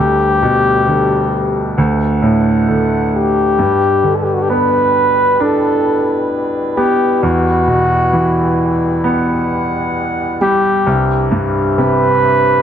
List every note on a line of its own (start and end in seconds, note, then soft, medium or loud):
0.00 1.74 D2 soft
0.00 1.76 D2 medium
0.00 10.71 B2 soft
0.00 1.76 G3 medium
0.00 5.38 D4 soft
0.00 1.76 G4 medium
0.00 1.78 G4 medium
0.43 1.74 B2 soft
0.88 1.75 D3 soft
1.77 3.56 D2 soft
1.77 3.44 A3 soft
1.77 3.44 F#5 medium
2.22 3.55 A2 soft
2.68 3.57 D3 soft
3.16 4.17 G4 medium
3.59 7.19 G2 soft
3.59 7.20 G3 soft
3.59 9.02 B4 medium
4.04 5.82 D3 soft
4.16 4.25 A4 soft
4.24 4.35 G4 soft
4.34 4.44 F#4 medium
4.42 4.50 G4 medium
4.50 6.28 B3 soft
4.50 5.44 B4 medium
5.40 7.19 D4 soft
5.40 10.71 E4 soft
5.40 6.33 A4 medium
6.77 7.22 B3 soft
6.77 7.24 G4 medium
7.23 10.83 E2 soft
7.23 10.71 G3 soft
7.23 9.05 F#4 medium
7.68 9.46 B2 soft
8.13 9.92 E3 soft
9.04 10.82 B3 soft
9.04 10.71 F#5 medium
10.41 10.85 G3 soft
10.41 11.28 G4 medium
10.87 12.62 C2 soft
10.87 12.62 C3 medium
10.87 12.62 E3 medium
10.87 12.62 D4 medium
10.87 12.62 G4 medium
11.31 12.62 G2 soft
11.78 12.62 C3 soft
11.78 12.62 B4 medium